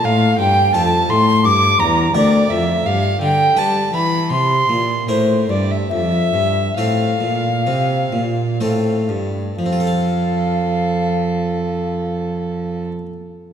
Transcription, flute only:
X:1
M:4/4
L:1/16
Q:1/4=71
K:F
V:1 name="Flute"
f2 g2 a2 c'2 d'2 b2 d2 e2 | f2 g2 a2 =b2 c'3 z c2 d e | e4 f8- f2 z2 | f16 |]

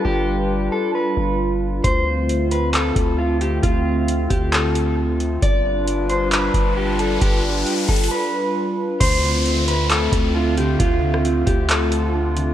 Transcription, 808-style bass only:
X:1
M:4/4
L:1/8
Q:1/4=134
K:Ddor
V:1 name="808-style bass" clef=bass
G,,,3 z2 G,,,3 | D,,4- D,, D,,3 | D,,3 D,,4- D,, | G,,,4- G,,, G,,,3 |
G,,,2 z G,,, z4 | D,,4- D,, D,,3 | D,,3 D,,4- D,, |]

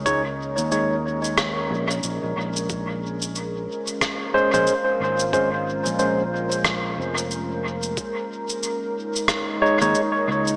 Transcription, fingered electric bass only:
X:1
M:4/4
L:1/16
Q:"Swing 16ths" 1/4=91
K:Bbm
V:1 name="Fingered electric bass" clef=bass
D,,3 E,,6- E,, B,,,2 B,,, B,,, B,,,2- | B,,,6 z4 z B,,, z2 A,,,2- | A,,,3 B,,,6- B,,, F,,,6 | z8 z3 E,, z2 D,,2 |]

